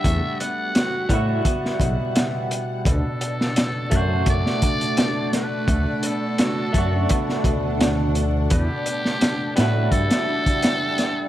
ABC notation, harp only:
X:1
M:4/4
L:1/8
Q:1/4=85
K:D
V:1 name="Harp"
A, B, F F B, B,, z2 | B,,4 z D z2 | A, B, F F B, B,, z2 | B,4 z D z2 |]